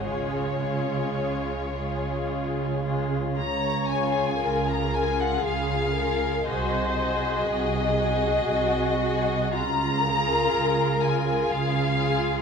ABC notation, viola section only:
X:1
M:3/4
L:1/8
Q:1/4=59
K:Db
V:1 name="Viola section"
[A,D] [A,D]2 [A,D]2 [A,D] | d2 B2 A B | c2 A2 G2 | F B3 A2 |]